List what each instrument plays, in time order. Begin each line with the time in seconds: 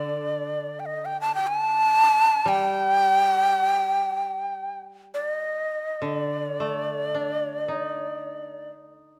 Already playing: koto D3, shakuhachi D5
0.80 shakuhachi G5
0.86 shakuhachi D#5
1.05 shakuhachi G5
1.21 shakuhachi A5
1.35 shakuhachi G5
1.48 shakuhachi A5
2.46 koto G3, shakuhachi G5
5.14 shakuhachi D5
5.27 shakuhachi D#5
6.02 koto D3, shakuhachi D#5
6.17 shakuhachi D5
6.60 koto A3
7.14 koto D4
7.68 koto D#4